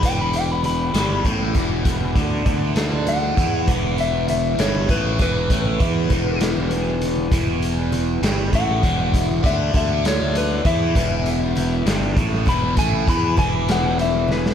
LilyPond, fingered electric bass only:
\new Staff \with { instrumentName = "Fingered electric bass" } { \clef bass \time 6/8 \key e \mixolydian \tempo 4. = 66 e,,4. g,,8 a,,8 e,,8~ | e,,8 d,8 d,4. e,8 | e,,4. g,,8 a,,8 e,,8 | a,,8 e,8 e,,2 |
e,,4. g,,8 a,,8 e,,8~ | e,,8 d,8 d,4. e,8 | e,,4. g,,8 a,,8 e,,8 | a,,8 e,8 e,,2 | }